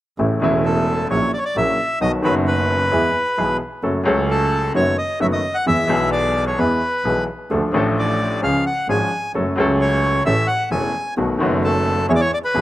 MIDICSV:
0, 0, Header, 1, 4, 480
1, 0, Start_track
1, 0, Key_signature, 3, "major"
1, 0, Tempo, 458015
1, 193, Time_signature, 4, 2, 24, 8
1, 13216, End_track
2, 0, Start_track
2, 0, Title_t, "Bandoneon"
2, 0, Program_c, 0, 23
2, 684, Note_on_c, 0, 69, 70
2, 1129, Note_off_c, 0, 69, 0
2, 1157, Note_on_c, 0, 73, 74
2, 1380, Note_off_c, 0, 73, 0
2, 1399, Note_on_c, 0, 74, 69
2, 1448, Note_on_c, 0, 73, 61
2, 1460, Note_off_c, 0, 74, 0
2, 1512, Note_off_c, 0, 73, 0
2, 1520, Note_on_c, 0, 74, 77
2, 1641, Note_off_c, 0, 74, 0
2, 1647, Note_on_c, 0, 76, 71
2, 2085, Note_off_c, 0, 76, 0
2, 2111, Note_on_c, 0, 75, 80
2, 2219, Note_off_c, 0, 75, 0
2, 2352, Note_on_c, 0, 71, 65
2, 2459, Note_off_c, 0, 71, 0
2, 2593, Note_on_c, 0, 71, 70
2, 3741, Note_off_c, 0, 71, 0
2, 4513, Note_on_c, 0, 69, 69
2, 4952, Note_off_c, 0, 69, 0
2, 4987, Note_on_c, 0, 73, 78
2, 5206, Note_off_c, 0, 73, 0
2, 5221, Note_on_c, 0, 75, 76
2, 5444, Note_off_c, 0, 75, 0
2, 5466, Note_on_c, 0, 76, 69
2, 5519, Note_off_c, 0, 76, 0
2, 5582, Note_on_c, 0, 75, 75
2, 5809, Note_on_c, 0, 78, 76
2, 5829, Note_off_c, 0, 75, 0
2, 5926, Note_off_c, 0, 78, 0
2, 5945, Note_on_c, 0, 76, 83
2, 6391, Note_off_c, 0, 76, 0
2, 6416, Note_on_c, 0, 74, 78
2, 6756, Note_off_c, 0, 74, 0
2, 6781, Note_on_c, 0, 73, 69
2, 6899, Note_on_c, 0, 71, 68
2, 6908, Note_off_c, 0, 73, 0
2, 7588, Note_off_c, 0, 71, 0
2, 8370, Note_on_c, 0, 74, 67
2, 8811, Note_off_c, 0, 74, 0
2, 8839, Note_on_c, 0, 77, 75
2, 9063, Note_off_c, 0, 77, 0
2, 9078, Note_on_c, 0, 78, 69
2, 9302, Note_off_c, 0, 78, 0
2, 9323, Note_on_c, 0, 80, 67
2, 9768, Note_off_c, 0, 80, 0
2, 10283, Note_on_c, 0, 73, 66
2, 10725, Note_off_c, 0, 73, 0
2, 10749, Note_on_c, 0, 76, 75
2, 10974, Note_off_c, 0, 76, 0
2, 10974, Note_on_c, 0, 78, 72
2, 11206, Note_off_c, 0, 78, 0
2, 11229, Note_on_c, 0, 80, 66
2, 11677, Note_off_c, 0, 80, 0
2, 12199, Note_on_c, 0, 69, 74
2, 12643, Note_off_c, 0, 69, 0
2, 12675, Note_on_c, 0, 73, 77
2, 12701, Note_off_c, 0, 73, 0
2, 12736, Note_on_c, 0, 74, 72
2, 12793, Note_on_c, 0, 73, 82
2, 12795, Note_off_c, 0, 74, 0
2, 12905, Note_off_c, 0, 73, 0
2, 12929, Note_on_c, 0, 74, 77
2, 12980, Note_off_c, 0, 74, 0
2, 13043, Note_on_c, 0, 71, 81
2, 13216, Note_off_c, 0, 71, 0
2, 13216, End_track
3, 0, Start_track
3, 0, Title_t, "Upright piano"
3, 0, Program_c, 1, 0
3, 196, Note_on_c, 1, 52, 33
3, 197, Note_on_c, 1, 49, 37
3, 199, Note_on_c, 1, 33, 42
3, 200, Note_on_c, 1, 45, 46
3, 202, Note_on_c, 1, 57, 33
3, 204, Note_on_c, 1, 64, 40
3, 398, Note_off_c, 1, 49, 0
3, 398, Note_off_c, 1, 52, 0
3, 399, Note_off_c, 1, 33, 0
3, 400, Note_off_c, 1, 45, 0
3, 401, Note_off_c, 1, 57, 0
3, 402, Note_off_c, 1, 64, 0
3, 416, Note_on_c, 1, 49, 56
3, 429, Note_on_c, 1, 52, 47
3, 436, Note_on_c, 1, 28, 65
3, 439, Note_on_c, 1, 40, 66
3, 447, Note_on_c, 1, 57, 53
3, 459, Note_on_c, 1, 64, 65
3, 1113, Note_off_c, 1, 49, 0
3, 1120, Note_off_c, 1, 52, 0
3, 1123, Note_off_c, 1, 28, 0
3, 1125, Note_off_c, 1, 40, 0
3, 1129, Note_off_c, 1, 57, 0
3, 1135, Note_off_c, 1, 64, 0
3, 1156, Note_on_c, 1, 49, 36
3, 1158, Note_on_c, 1, 54, 34
3, 1159, Note_on_c, 1, 34, 44
3, 1159, Note_on_c, 1, 46, 45
3, 1160, Note_on_c, 1, 64, 40
3, 1162, Note_on_c, 1, 58, 35
3, 1358, Note_off_c, 1, 49, 0
3, 1359, Note_off_c, 1, 34, 0
3, 1359, Note_off_c, 1, 46, 0
3, 1359, Note_off_c, 1, 54, 0
3, 1360, Note_off_c, 1, 64, 0
3, 1361, Note_off_c, 1, 58, 0
3, 1636, Note_on_c, 1, 49, 36
3, 1637, Note_on_c, 1, 46, 47
3, 1637, Note_on_c, 1, 54, 35
3, 1640, Note_on_c, 1, 58, 34
3, 1643, Note_on_c, 1, 64, 42
3, 1644, Note_on_c, 1, 34, 45
3, 1836, Note_off_c, 1, 46, 0
3, 1836, Note_off_c, 1, 49, 0
3, 1836, Note_off_c, 1, 54, 0
3, 1838, Note_off_c, 1, 58, 0
3, 1839, Note_off_c, 1, 64, 0
3, 1840, Note_off_c, 1, 34, 0
3, 2105, Note_on_c, 1, 54, 35
3, 2106, Note_on_c, 1, 51, 36
3, 2107, Note_on_c, 1, 35, 42
3, 2111, Note_on_c, 1, 47, 45
3, 2112, Note_on_c, 1, 59, 34
3, 2115, Note_on_c, 1, 66, 42
3, 2309, Note_off_c, 1, 54, 0
3, 2310, Note_off_c, 1, 35, 0
3, 2310, Note_off_c, 1, 51, 0
3, 2312, Note_off_c, 1, 47, 0
3, 2312, Note_off_c, 1, 59, 0
3, 2314, Note_off_c, 1, 66, 0
3, 2330, Note_on_c, 1, 51, 56
3, 2346, Note_on_c, 1, 54, 52
3, 2347, Note_on_c, 1, 42, 66
3, 2352, Note_on_c, 1, 30, 68
3, 2354, Note_on_c, 1, 59, 51
3, 2370, Note_on_c, 1, 66, 65
3, 3019, Note_off_c, 1, 51, 0
3, 3027, Note_off_c, 1, 54, 0
3, 3028, Note_off_c, 1, 42, 0
3, 3030, Note_off_c, 1, 30, 0
3, 3031, Note_off_c, 1, 59, 0
3, 3039, Note_off_c, 1, 66, 0
3, 3055, Note_on_c, 1, 52, 46
3, 3056, Note_on_c, 1, 40, 45
3, 3057, Note_on_c, 1, 56, 38
3, 3059, Note_on_c, 1, 68, 44
3, 3061, Note_on_c, 1, 59, 36
3, 3261, Note_off_c, 1, 40, 0
3, 3261, Note_off_c, 1, 56, 0
3, 3262, Note_off_c, 1, 52, 0
3, 3263, Note_off_c, 1, 59, 0
3, 3263, Note_off_c, 1, 68, 0
3, 3539, Note_on_c, 1, 52, 39
3, 3540, Note_on_c, 1, 47, 48
3, 3542, Note_on_c, 1, 56, 36
3, 3543, Note_on_c, 1, 35, 45
3, 3544, Note_on_c, 1, 59, 36
3, 3546, Note_on_c, 1, 68, 46
3, 3741, Note_off_c, 1, 52, 0
3, 3742, Note_off_c, 1, 47, 0
3, 3743, Note_off_c, 1, 35, 0
3, 3743, Note_off_c, 1, 56, 0
3, 3744, Note_off_c, 1, 59, 0
3, 3745, Note_off_c, 1, 68, 0
3, 4015, Note_on_c, 1, 54, 46
3, 4017, Note_on_c, 1, 57, 36
3, 4018, Note_on_c, 1, 42, 47
3, 4018, Note_on_c, 1, 61, 37
3, 4019, Note_on_c, 1, 69, 43
3, 4214, Note_off_c, 1, 54, 0
3, 4218, Note_off_c, 1, 57, 0
3, 4219, Note_off_c, 1, 42, 0
3, 4219, Note_off_c, 1, 61, 0
3, 4219, Note_off_c, 1, 69, 0
3, 4230, Note_on_c, 1, 54, 58
3, 4243, Note_on_c, 1, 57, 54
3, 4250, Note_on_c, 1, 37, 74
3, 4252, Note_on_c, 1, 49, 68
3, 4258, Note_on_c, 1, 61, 54
3, 4272, Note_on_c, 1, 69, 63
3, 4927, Note_off_c, 1, 54, 0
3, 4934, Note_off_c, 1, 57, 0
3, 4937, Note_off_c, 1, 37, 0
3, 4938, Note_off_c, 1, 49, 0
3, 4941, Note_off_c, 1, 61, 0
3, 4948, Note_off_c, 1, 69, 0
3, 4972, Note_on_c, 1, 57, 37
3, 4974, Note_on_c, 1, 51, 41
3, 4976, Note_on_c, 1, 54, 46
3, 4977, Note_on_c, 1, 42, 50
3, 4977, Note_on_c, 1, 59, 35
3, 4978, Note_on_c, 1, 66, 44
3, 5177, Note_off_c, 1, 57, 0
3, 5178, Note_off_c, 1, 51, 0
3, 5179, Note_off_c, 1, 54, 0
3, 5180, Note_off_c, 1, 42, 0
3, 5180, Note_off_c, 1, 59, 0
3, 5180, Note_off_c, 1, 66, 0
3, 5448, Note_on_c, 1, 51, 40
3, 5449, Note_on_c, 1, 42, 47
3, 5451, Note_on_c, 1, 57, 38
3, 5451, Note_on_c, 1, 59, 38
3, 5452, Note_on_c, 1, 54, 47
3, 5455, Note_on_c, 1, 66, 45
3, 5656, Note_off_c, 1, 51, 0
3, 5657, Note_off_c, 1, 42, 0
3, 5658, Note_off_c, 1, 57, 0
3, 5658, Note_off_c, 1, 59, 0
3, 5659, Note_off_c, 1, 54, 0
3, 5660, Note_off_c, 1, 66, 0
3, 5936, Note_on_c, 1, 52, 49
3, 5937, Note_on_c, 1, 56, 38
3, 5938, Note_on_c, 1, 68, 40
3, 5940, Note_on_c, 1, 40, 43
3, 5940, Note_on_c, 1, 59, 37
3, 6136, Note_off_c, 1, 52, 0
3, 6141, Note_off_c, 1, 56, 0
3, 6142, Note_off_c, 1, 40, 0
3, 6142, Note_off_c, 1, 68, 0
3, 6143, Note_off_c, 1, 59, 0
3, 6152, Note_on_c, 1, 52, 58
3, 6167, Note_on_c, 1, 56, 54
3, 6172, Note_on_c, 1, 47, 66
3, 6177, Note_on_c, 1, 35, 69
3, 6182, Note_on_c, 1, 59, 52
3, 6195, Note_on_c, 1, 68, 63
3, 6856, Note_off_c, 1, 52, 0
3, 6863, Note_off_c, 1, 56, 0
3, 6866, Note_off_c, 1, 47, 0
3, 6868, Note_off_c, 1, 35, 0
3, 6871, Note_off_c, 1, 59, 0
3, 6877, Note_off_c, 1, 68, 0
3, 6896, Note_on_c, 1, 52, 42
3, 6899, Note_on_c, 1, 56, 35
3, 6901, Note_on_c, 1, 40, 45
3, 6902, Note_on_c, 1, 59, 35
3, 6905, Note_on_c, 1, 68, 44
3, 7106, Note_off_c, 1, 56, 0
3, 7107, Note_off_c, 1, 52, 0
3, 7108, Note_off_c, 1, 40, 0
3, 7108, Note_off_c, 1, 59, 0
3, 7109, Note_off_c, 1, 68, 0
3, 7386, Note_on_c, 1, 35, 44
3, 7386, Note_on_c, 1, 56, 34
3, 7388, Note_on_c, 1, 52, 39
3, 7389, Note_on_c, 1, 47, 45
3, 7393, Note_on_c, 1, 59, 34
3, 7393, Note_on_c, 1, 68, 42
3, 7593, Note_off_c, 1, 35, 0
3, 7593, Note_off_c, 1, 56, 0
3, 7594, Note_off_c, 1, 47, 0
3, 7594, Note_off_c, 1, 52, 0
3, 7596, Note_off_c, 1, 59, 0
3, 7596, Note_off_c, 1, 68, 0
3, 7866, Note_on_c, 1, 53, 38
3, 7867, Note_on_c, 1, 57, 35
3, 7869, Note_on_c, 1, 50, 45
3, 7870, Note_on_c, 1, 38, 45
3, 7871, Note_on_c, 1, 62, 36
3, 7871, Note_on_c, 1, 69, 44
3, 8074, Note_off_c, 1, 53, 0
3, 8074, Note_off_c, 1, 57, 0
3, 8075, Note_off_c, 1, 50, 0
3, 8076, Note_off_c, 1, 38, 0
3, 8076, Note_off_c, 1, 62, 0
3, 8076, Note_off_c, 1, 69, 0
3, 8092, Note_on_c, 1, 53, 56
3, 8107, Note_on_c, 1, 57, 54
3, 8113, Note_on_c, 1, 45, 64
3, 8114, Note_on_c, 1, 33, 67
3, 8119, Note_on_c, 1, 62, 51
3, 8134, Note_on_c, 1, 69, 61
3, 8790, Note_off_c, 1, 53, 0
3, 8797, Note_off_c, 1, 57, 0
3, 8800, Note_off_c, 1, 45, 0
3, 8801, Note_off_c, 1, 33, 0
3, 8803, Note_off_c, 1, 62, 0
3, 8811, Note_off_c, 1, 69, 0
3, 8823, Note_on_c, 1, 53, 39
3, 8826, Note_on_c, 1, 61, 36
3, 8827, Note_on_c, 1, 49, 46
3, 8827, Note_on_c, 1, 56, 35
3, 8829, Note_on_c, 1, 37, 46
3, 8832, Note_on_c, 1, 68, 43
3, 9033, Note_off_c, 1, 53, 0
3, 9034, Note_off_c, 1, 61, 0
3, 9035, Note_off_c, 1, 49, 0
3, 9035, Note_off_c, 1, 56, 0
3, 9036, Note_off_c, 1, 37, 0
3, 9037, Note_off_c, 1, 68, 0
3, 9317, Note_on_c, 1, 53, 40
3, 9317, Note_on_c, 1, 56, 37
3, 9317, Note_on_c, 1, 61, 37
3, 9319, Note_on_c, 1, 44, 48
3, 9320, Note_on_c, 1, 32, 44
3, 9321, Note_on_c, 1, 68, 45
3, 9520, Note_off_c, 1, 53, 0
3, 9520, Note_off_c, 1, 56, 0
3, 9520, Note_off_c, 1, 61, 0
3, 9521, Note_off_c, 1, 32, 0
3, 9521, Note_off_c, 1, 44, 0
3, 9522, Note_off_c, 1, 68, 0
3, 9794, Note_on_c, 1, 54, 48
3, 9798, Note_on_c, 1, 57, 34
3, 9799, Note_on_c, 1, 42, 45
3, 9800, Note_on_c, 1, 61, 36
3, 9802, Note_on_c, 1, 69, 44
3, 10000, Note_off_c, 1, 54, 0
3, 10001, Note_off_c, 1, 42, 0
3, 10001, Note_off_c, 1, 57, 0
3, 10002, Note_off_c, 1, 61, 0
3, 10002, Note_off_c, 1, 69, 0
3, 10016, Note_on_c, 1, 54, 61
3, 10031, Note_on_c, 1, 57, 53
3, 10038, Note_on_c, 1, 37, 69
3, 10040, Note_on_c, 1, 49, 68
3, 10045, Note_on_c, 1, 61, 53
3, 10060, Note_on_c, 1, 69, 67
3, 10708, Note_off_c, 1, 54, 0
3, 10716, Note_off_c, 1, 57, 0
3, 10719, Note_off_c, 1, 37, 0
3, 10720, Note_off_c, 1, 49, 0
3, 10723, Note_off_c, 1, 61, 0
3, 10730, Note_off_c, 1, 69, 0
3, 10756, Note_on_c, 1, 52, 40
3, 10759, Note_on_c, 1, 61, 37
3, 10760, Note_on_c, 1, 45, 46
3, 10760, Note_on_c, 1, 69, 43
3, 10761, Note_on_c, 1, 57, 35
3, 10762, Note_on_c, 1, 33, 48
3, 10957, Note_off_c, 1, 52, 0
3, 10958, Note_off_c, 1, 45, 0
3, 10958, Note_off_c, 1, 61, 0
3, 10958, Note_off_c, 1, 69, 0
3, 10959, Note_off_c, 1, 33, 0
3, 10959, Note_off_c, 1, 57, 0
3, 11228, Note_on_c, 1, 52, 40
3, 11228, Note_on_c, 1, 57, 35
3, 11229, Note_on_c, 1, 40, 48
3, 11230, Note_on_c, 1, 28, 49
3, 11231, Note_on_c, 1, 69, 42
3, 11232, Note_on_c, 1, 61, 38
3, 11432, Note_off_c, 1, 40, 0
3, 11432, Note_off_c, 1, 52, 0
3, 11432, Note_off_c, 1, 57, 0
3, 11433, Note_off_c, 1, 28, 0
3, 11433, Note_off_c, 1, 69, 0
3, 11434, Note_off_c, 1, 61, 0
3, 11705, Note_on_c, 1, 51, 40
3, 11709, Note_on_c, 1, 47, 48
3, 11710, Note_on_c, 1, 57, 35
3, 11712, Note_on_c, 1, 59, 35
3, 11714, Note_on_c, 1, 35, 45
3, 11715, Note_on_c, 1, 66, 43
3, 11910, Note_off_c, 1, 51, 0
3, 11912, Note_off_c, 1, 47, 0
3, 11913, Note_off_c, 1, 57, 0
3, 11913, Note_off_c, 1, 59, 0
3, 11914, Note_off_c, 1, 35, 0
3, 11915, Note_off_c, 1, 66, 0
3, 11929, Note_on_c, 1, 51, 61
3, 11948, Note_on_c, 1, 57, 53
3, 11950, Note_on_c, 1, 42, 73
3, 11952, Note_on_c, 1, 30, 72
3, 11960, Note_on_c, 1, 59, 57
3, 11971, Note_on_c, 1, 66, 65
3, 12624, Note_off_c, 1, 51, 0
3, 12633, Note_off_c, 1, 57, 0
3, 12634, Note_off_c, 1, 42, 0
3, 12635, Note_off_c, 1, 30, 0
3, 12640, Note_off_c, 1, 59, 0
3, 12645, Note_off_c, 1, 66, 0
3, 12668, Note_on_c, 1, 52, 43
3, 12671, Note_on_c, 1, 40, 46
3, 12671, Note_on_c, 1, 59, 38
3, 12672, Note_on_c, 1, 56, 35
3, 12674, Note_on_c, 1, 68, 43
3, 12874, Note_off_c, 1, 40, 0
3, 12874, Note_off_c, 1, 52, 0
3, 12874, Note_off_c, 1, 59, 0
3, 12875, Note_off_c, 1, 56, 0
3, 12876, Note_off_c, 1, 68, 0
3, 13144, Note_on_c, 1, 47, 49
3, 13146, Note_on_c, 1, 52, 40
3, 13148, Note_on_c, 1, 56, 38
3, 13149, Note_on_c, 1, 35, 46
3, 13149, Note_on_c, 1, 59, 36
3, 13152, Note_on_c, 1, 68, 46
3, 13216, Note_off_c, 1, 35, 0
3, 13216, Note_off_c, 1, 47, 0
3, 13216, Note_off_c, 1, 52, 0
3, 13216, Note_off_c, 1, 56, 0
3, 13216, Note_off_c, 1, 59, 0
3, 13216, Note_off_c, 1, 68, 0
3, 13216, End_track
4, 0, Start_track
4, 0, Title_t, "Double bass"
4, 0, Program_c, 2, 43
4, 192, Note_on_c, 2, 33, 46
4, 396, Note_off_c, 2, 33, 0
4, 430, Note_on_c, 2, 28, 71
4, 1120, Note_off_c, 2, 28, 0
4, 1154, Note_on_c, 2, 34, 48
4, 1357, Note_off_c, 2, 34, 0
4, 1630, Note_on_c, 2, 34, 49
4, 1833, Note_off_c, 2, 34, 0
4, 2108, Note_on_c, 2, 35, 50
4, 2311, Note_off_c, 2, 35, 0
4, 2342, Note_on_c, 2, 30, 75
4, 3025, Note_off_c, 2, 30, 0
4, 3063, Note_on_c, 2, 40, 53
4, 3265, Note_off_c, 2, 40, 0
4, 3543, Note_on_c, 2, 35, 46
4, 3744, Note_off_c, 2, 35, 0
4, 4020, Note_on_c, 2, 30, 50
4, 4220, Note_off_c, 2, 30, 0
4, 4263, Note_on_c, 2, 37, 75
4, 4944, Note_off_c, 2, 37, 0
4, 4981, Note_on_c, 2, 30, 53
4, 5182, Note_off_c, 2, 30, 0
4, 5459, Note_on_c, 2, 30, 51
4, 5662, Note_off_c, 2, 30, 0
4, 5940, Note_on_c, 2, 40, 50
4, 6143, Note_off_c, 2, 40, 0
4, 6176, Note_on_c, 2, 35, 79
4, 6868, Note_off_c, 2, 35, 0
4, 6903, Note_on_c, 2, 40, 48
4, 7108, Note_off_c, 2, 40, 0
4, 7382, Note_on_c, 2, 35, 47
4, 7590, Note_off_c, 2, 35, 0
4, 7867, Note_on_c, 2, 38, 51
4, 8074, Note_off_c, 2, 38, 0
4, 8100, Note_on_c, 2, 33, 70
4, 8794, Note_off_c, 2, 33, 0
4, 8831, Note_on_c, 2, 37, 51
4, 9037, Note_off_c, 2, 37, 0
4, 9310, Note_on_c, 2, 32, 45
4, 9517, Note_off_c, 2, 32, 0
4, 9797, Note_on_c, 2, 30, 48
4, 10000, Note_off_c, 2, 30, 0
4, 10034, Note_on_c, 2, 37, 77
4, 10717, Note_off_c, 2, 37, 0
4, 10756, Note_on_c, 2, 33, 53
4, 10956, Note_off_c, 2, 33, 0
4, 11232, Note_on_c, 2, 28, 47
4, 11434, Note_off_c, 2, 28, 0
4, 11712, Note_on_c, 2, 35, 53
4, 11913, Note_off_c, 2, 35, 0
4, 11946, Note_on_c, 2, 30, 75
4, 12632, Note_off_c, 2, 30, 0
4, 12667, Note_on_c, 2, 40, 52
4, 12872, Note_off_c, 2, 40, 0
4, 13149, Note_on_c, 2, 35, 47
4, 13216, Note_off_c, 2, 35, 0
4, 13216, End_track
0, 0, End_of_file